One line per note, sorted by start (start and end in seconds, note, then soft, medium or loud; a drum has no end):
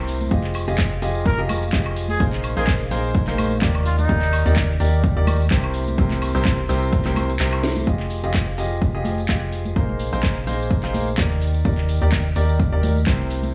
0.00 0.29 C2 loud
0.00 0.29 C3 medium
0.00 0.29 E4 medium
0.00 0.29 G4 medium
0.00 0.29 A#4 medium
0.00 0.29 C5 medium
0.07 open hi-hat loud
0.07 tambourine loud
0.07 cabasa medium
0.21 closed hi-hat medium
0.21 tambourine medium
0.21 high conga medium
0.21 cabasa soft
0.31 0.65 F1 loud
0.31 0.65 F3 medium
0.31 0.65 F4 medium
0.31 0.65 G4 medium
0.31 0.65 G#4 medium
0.31 0.65 D#5 medium
0.31 kick loud
0.31 closed hi-hat medium
0.31 tambourine soft
0.31 cabasa soft
0.44 clap soft
0.44 closed hi-hat soft
0.44 cabasa soft
0.54 open hi-hat loud
0.54 tambourine medium
0.54 cabasa medium
0.54 high woodblock medium
0.68 1.00 F1 loud
0.68 0.91 F3 medium
0.68 0.91 F4 medium
0.68 0.91 G4 medium
0.68 0.91 G#4 medium
0.68 0.91 D#5 loud
0.68 closed hi-hat medium
0.68 tambourine soft
0.68 cabasa soft
0.78 kick loud
0.78 clap loud
0.78 closed hi-hat medium
0.78 cabasa soft
0.91 closed hi-hat soft
0.91 cabasa soft
1.02 1.36 F1 loud
1.02 1.36 F3 medium
1.02 1.36 F4 medium
1.02 1.36 G4 medium
1.02 1.36 G#4 medium
1.02 1.36 D#5 loud
1.02 open hi-hat loud
1.02 tambourine loud
1.02 cabasa medium
1.15 tambourine medium
1.15 cabasa soft
1.26 1.43 A#4 loud
1.26 kick loud
1.26 closed hi-hat medium
1.26 tambourine soft
1.26 cabasa soft
1.39 1.71 F1 loud
1.39 1.62 F3 loud
1.39 1.62 F4 medium
1.39 1.62 G4 medium
1.39 1.62 G#4 medium
1.39 1.62 D#5 loud
1.39 closed hi-hat soft
1.39 cabasa soft
1.49 open hi-hat loud
1.49 tambourine loud
1.49 high conga medium
1.49 cabasa medium
1.49 high woodblock medium
1.62 closed hi-hat soft
1.62 tambourine medium
1.62 cabasa soft
1.73 2.18 F1 loud
1.73 2.18 F3 medium
1.73 2.18 F4 medium
1.73 2.18 G4 medium
1.73 2.18 G#4 medium
1.73 2.18 D#5 medium
1.73 kick loud
1.73 clap loud
1.73 closed hi-hat medium
1.73 tambourine soft
1.73 cabasa soft
1.86 closed hi-hat soft
1.86 cabasa soft
1.86 high woodblock medium
1.96 open hi-hat loud
1.96 tambourine loud
1.96 cabasa medium
2.08 2.25 G#4 medium
2.08 closed hi-hat medium
2.08 tambourine medium
2.08 high conga medium
2.08 cabasa soft
2.20 2.54 A#1 loud
2.20 2.54 A#3 medium
2.20 2.54 D#4 medium
2.20 2.54 G#4 medium
2.20 2.54 A#4 medium
2.20 2.54 C5 medium
2.20 kick loud
2.20 closed hi-hat medium
2.20 tambourine soft
2.20 cabasa soft
2.33 clap soft
2.33 closed hi-hat soft
2.33 cabasa soft
2.43 open hi-hat loud
2.43 tambourine medium
2.43 cabasa medium
2.43 high woodblock medium
2.57 2.89 A#1 loud
2.57 2.80 A#3 medium
2.57 2.80 D#4 medium
2.57 2.72 G#4 medium
2.57 2.80 G#4 medium
2.57 2.80 A#4 medium
2.57 2.80 C5 loud
2.57 closed hi-hat medium
2.57 tambourine medium
2.57 cabasa soft
2.67 kick loud
2.67 clap loud
2.67 closed hi-hat medium
2.67 cabasa soft
2.80 closed hi-hat soft
2.80 cabasa soft
2.91 3.25 A#1 medium
2.91 3.25 A#3 medium
2.91 3.25 D#4 medium
2.91 3.25 G#4 medium
2.91 3.25 A#4 medium
2.91 3.25 C5 loud
2.91 open hi-hat loud
2.91 tambourine medium
2.91 cabasa medium
3.04 tambourine medium
3.04 cabasa soft
3.14 kick loud
3.14 closed hi-hat medium
3.14 tambourine soft
3.14 cabasa soft
3.27 3.60 A#1 loud
3.27 3.51 A#3 medium
3.27 3.51 D#4 medium
3.27 3.51 G#4 medium
3.27 3.51 A#4 medium
3.27 3.51 C5 loud
3.27 clap soft
3.27 closed hi-hat soft
3.27 high conga medium
3.27 cabasa soft
3.38 open hi-hat loud
3.38 tambourine medium
3.38 high conga medium
3.38 cabasa medium
3.38 high woodblock medium
3.51 closed hi-hat soft
3.51 tambourine medium
3.51 cabasa soft
3.62 4.07 D#2 loud
3.62 4.07 D#3 medium
3.62 4.07 D#4 medium
3.62 4.07 G4 medium
3.62 4.07 A#4 medium
3.62 4.07 D5 medium
3.62 kick loud
3.62 clap loud
3.62 closed hi-hat medium
3.62 cabasa soft
3.75 closed hi-hat soft
3.75 cabasa soft
3.75 high woodblock medium
3.86 3.96 F4 medium
3.86 open hi-hat loud
3.86 tambourine medium
3.86 cabasa medium
3.98 4.64 D#4 loud
3.98 closed hi-hat medium
3.98 tambourine medium
3.98 high conga medium
3.98 cabasa soft
4.09 4.43 D#2 loud
4.09 4.43 D#3 medium
4.09 4.43 D#4 medium
4.09 4.43 G4 medium
4.09 4.43 A#4 medium
4.09 4.43 D5 medium
4.09 kick loud
4.09 closed hi-hat medium
4.09 tambourine soft
4.09 cabasa soft
4.22 clap soft
4.22 closed hi-hat soft
4.22 cabasa soft
4.33 open hi-hat loud
4.33 tambourine loud
4.33 cabasa medium
4.33 high woodblock medium
4.46 4.78 D#2 loud
4.46 4.69 D#3 medium
4.46 4.69 D#4 medium
4.46 4.69 G4 medium
4.46 4.69 A#4 medium
4.46 4.69 D5 loud
4.46 closed hi-hat medium
4.46 tambourine medium
4.46 cabasa soft
4.56 kick loud
4.56 clap loud
4.56 closed hi-hat medium
4.56 tambourine soft
4.56 cabasa soft
4.69 closed hi-hat soft
4.69 cabasa soft
4.80 5.14 D#2 medium
4.80 5.14 D#3 medium
4.80 5.14 D#4 medium
4.80 5.14 G4 medium
4.80 5.14 A#4 medium
4.80 5.14 D5 loud
4.80 open hi-hat loud
4.80 tambourine medium
4.80 cabasa medium
4.92 tambourine medium
4.92 cabasa soft
5.04 kick loud
5.04 closed hi-hat medium
5.04 tambourine soft
5.04 cabasa medium
5.17 5.49 D#2 loud
5.17 5.40 D#3 loud
5.17 5.40 D#4 medium
5.17 5.40 G4 medium
5.17 5.40 A#4 medium
5.17 5.40 D5 loud
5.17 closed hi-hat soft
5.17 cabasa soft
5.27 open hi-hat loud
5.27 tambourine loud
5.27 high conga loud
5.27 cabasa medium
5.27 high woodblock medium
5.40 closed hi-hat soft
5.40 tambourine medium
5.40 cabasa soft
5.51 5.96 C2 loud
5.51 5.96 C3 medium
5.51 5.96 E4 medium
5.51 5.96 G4 medium
5.51 5.96 A#4 medium
5.51 5.96 C5 medium
5.51 kick loud
5.51 clap loud
5.51 closed hi-hat medium
5.51 tambourine soft
5.51 cabasa soft
5.64 closed hi-hat soft
5.64 cabasa soft
5.64 high woodblock medium
5.74 open hi-hat loud
5.74 tambourine medium
5.74 cabasa medium
5.87 closed hi-hat medium
5.87 tambourine medium
5.87 high conga medium
5.87 cabasa soft
5.98 6.32 C2 loud
5.98 6.32 C3 medium
5.98 6.32 E4 medium
5.98 6.32 G4 medium
5.98 6.32 A#4 medium
5.98 6.32 C5 medium
5.98 kick loud
5.98 closed hi-hat medium
5.98 tambourine soft
5.98 cabasa soft
6.11 clap soft
6.11 closed hi-hat soft
6.11 high conga medium
6.11 cabasa soft
6.22 open hi-hat loud
6.22 tambourine medium
6.22 cabasa medium
6.22 high woodblock medium
6.35 6.67 C2 loud
6.35 6.58 C3 medium
6.35 6.58 E4 medium
6.35 6.58 G4 medium
6.35 6.58 A#4 medium
6.35 6.58 C5 loud
6.35 closed hi-hat medium
6.35 tambourine medium
6.35 cabasa soft
6.45 kick loud
6.45 clap loud
6.45 closed hi-hat medium
6.45 cabasa soft
6.58 closed hi-hat soft
6.58 cabasa soft
6.69 7.03 C2 loud
6.69 7.03 C3 medium
6.69 7.02 E4 medium
6.69 7.02 G4 medium
6.69 7.02 A#4 medium
6.69 7.02 C5 loud
6.69 open hi-hat loud
6.69 tambourine medium
6.69 cabasa medium
6.82 closed hi-hat soft
6.82 tambourine soft
6.82 cabasa soft
6.93 kick loud
6.93 closed hi-hat medium
6.93 tambourine soft
6.93 cabasa soft
7.05 7.38 C2 loud
7.05 7.29 C3 medium
7.05 7.29 E4 medium
7.05 7.29 G4 medium
7.05 7.29 A#4 medium
7.05 7.29 C5 loud
7.05 clap soft
7.05 closed hi-hat soft
7.05 high conga medium
7.05 cabasa soft
7.16 open hi-hat loud
7.16 tambourine medium
7.16 high conga medium
7.16 cabasa medium
7.16 high woodblock medium
7.29 closed hi-hat soft
7.29 tambourine medium
7.29 cabasa soft
7.40 7.85 C2 loud
7.40 7.85 C3 medium
7.40 7.85 E4 medium
7.40 7.85 G4 medium
7.40 7.85 A#4 medium
7.40 7.85 C5 medium
7.40 clap loud
7.40 closed hi-hat medium
7.40 tambourine soft
7.40 cabasa soft
7.53 closed hi-hat soft
7.53 cabasa soft
7.53 high woodblock medium
7.63 snare medium
7.63 open hi-hat loud
7.63 tambourine medium
7.63 cabasa medium
7.76 closed hi-hat medium
7.76 tambourine soft
7.76 high conga medium
7.76 cabasa soft
7.87 8.21 F1 loud
7.87 8.21 F3 medium
7.87 8.21 F4 medium
7.87 8.21 G4 medium
7.87 8.21 G#4 medium
7.87 8.21 D#5 medium
7.87 kick loud
7.87 closed hi-hat medium
7.87 tambourine soft
8.00 clap soft
8.00 closed hi-hat soft
8.10 open hi-hat loud
8.10 tambourine medium
8.24 8.56 F1 medium
8.24 8.47 F3 medium
8.24 8.47 F4 medium
8.24 8.47 G4 medium
8.24 8.47 G#4 medium
8.24 8.47 D#5 loud
8.24 closed hi-hat medium
8.24 tambourine soft
8.34 kick loud
8.34 clap loud
8.34 closed hi-hat medium
8.34 tambourine soft
8.47 closed hi-hat soft
8.58 8.92 F1 medium
8.58 8.91 F3 medium
8.58 8.91 F4 medium
8.58 8.91 G4 medium
8.58 8.91 G#4 medium
8.58 8.91 D#5 medium
8.58 open hi-hat loud
8.58 tambourine medium
8.71 tambourine soft
8.82 kick loud
8.82 closed hi-hat medium
8.82 tambourine soft
8.95 9.27 F1 loud
8.95 9.18 F3 medium
8.95 9.18 F4 medium
8.95 9.18 G4 medium
8.95 9.18 G#4 medium
8.95 9.18 D#5 loud
8.95 closed hi-hat soft
9.05 open hi-hat loud
9.05 tambourine medium
9.05 high conga loud
9.18 closed hi-hat soft
9.18 tambourine medium
9.29 9.74 F1 loud
9.29 9.74 F3 medium
9.29 9.74 F4 medium
9.29 9.74 G4 medium
9.29 9.74 G#4 medium
9.29 9.74 D#5 medium
9.29 kick loud
9.29 clap loud
9.29 closed hi-hat medium
9.29 tambourine soft
9.42 closed hi-hat soft
9.52 open hi-hat loud
9.52 tambourine medium
9.65 closed hi-hat medium
9.65 tambourine soft
9.65 high conga medium
9.76 10.10 A#1 loud
9.76 10.10 A#3 medium
9.76 10.10 D#4 medium
9.76 10.10 G#4 medium
9.76 10.10 A#4 medium
9.76 10.10 C5 medium
9.76 kick loud
9.76 closed hi-hat medium
9.76 tambourine soft
9.89 closed hi-hat soft
9.89 high conga medium
9.99 open hi-hat loud
9.99 tambourine medium
10.13 10.45 A#1 loud
10.13 10.36 A#3 medium
10.13 10.36 D#4 medium
10.13 10.36 G#4 medium
10.13 10.36 A#4 medium
10.13 10.36 C5 loud
10.13 closed hi-hat medium
10.13 tambourine medium
10.23 kick loud
10.23 clap loud
10.23 closed hi-hat medium
10.23 tambourine soft
10.36 closed hi-hat soft
10.47 10.81 A#1 medium
10.47 10.80 A#3 medium
10.47 10.80 D#4 medium
10.47 10.80 G#4 medium
10.47 10.80 A#4 medium
10.47 10.80 C5 loud
10.47 open hi-hat loud
10.47 tambourine loud
10.60 closed hi-hat soft
10.60 tambourine medium
10.71 kick loud
10.71 closed hi-hat medium
10.71 tambourine soft
10.83 11.16 A#1 medium
10.83 11.07 A#3 medium
10.83 11.07 D#4 medium
10.83 11.07 G#4 medium
10.83 11.07 A#4 medium
10.83 11.07 C5 loud
10.83 clap soft
10.83 closed hi-hat soft
10.94 open hi-hat loud
10.94 tambourine loud
10.94 high conga loud
11.07 closed hi-hat soft
11.07 tambourine medium
11.18 11.63 D#2 medium
11.18 11.63 D#3 medium
11.18 11.63 D#4 medium
11.18 11.63 G4 medium
11.18 11.63 A#4 medium
11.18 11.63 D5 medium
11.18 kick loud
11.18 clap loud
11.18 closed hi-hat medium
11.18 tambourine soft
11.31 closed hi-hat soft
11.42 open hi-hat loud
11.42 tambourine medium
11.54 closed hi-hat medium
11.54 tambourine medium
11.65 11.99 D#2 medium
11.65 11.99 D#3 medium
11.65 11.99 D#4 medium
11.65 11.99 G4 medium
11.65 11.99 A#4 medium
11.65 11.99 D5 medium
11.65 kick loud
11.65 closed hi-hat medium
11.65 tambourine soft
11.78 clap soft
11.78 closed hi-hat soft
11.89 open hi-hat loud
11.89 tambourine medium
12.01 12.34 D#2 loud
12.01 12.25 D#3 medium
12.01 12.25 D#4 medium
12.01 12.25 G4 medium
12.01 12.25 A#4 medium
12.01 12.25 D5 loud
12.01 closed hi-hat medium
12.01 tambourine soft
12.12 kick loud
12.12 clap loud
12.12 closed hi-hat medium
12.12 tambourine soft
12.25 closed hi-hat soft
12.36 12.70 D#2 medium
12.36 12.69 D#3 medium
12.36 12.69 D#4 medium
12.36 12.69 G4 medium
12.36 12.69 A#4 medium
12.36 12.69 D5 loud
12.36 open hi-hat loud
12.36 tambourine medium
12.49 tambourine medium
12.60 kick loud
12.60 closed hi-hat medium
12.60 tambourine soft
12.72 13.05 D#2 loud
12.72 12.96 D#3 medium
12.72 12.96 D#4 medium
12.72 12.96 G4 medium
12.72 12.96 A#4 medium
12.72 12.96 D5 loud
12.72 closed hi-hat soft
12.83 open hi-hat loud
12.83 tambourine loud
12.83 high conga loud
12.96 closed hi-hat soft
12.96 tambourine medium
13.07 13.52 C2 loud
13.07 13.52 C3 medium
13.07 13.51 E4 medium
13.07 13.51 G4 medium
13.07 13.52 A#4 medium
13.07 13.51 C5 medium
13.07 kick loud
13.07 clap loud
13.07 closed hi-hat medium
13.20 closed hi-hat soft
13.30 open hi-hat loud
13.30 tambourine medium
13.43 closed hi-hat soft
13.43 tambourine medium
13.43 high conga medium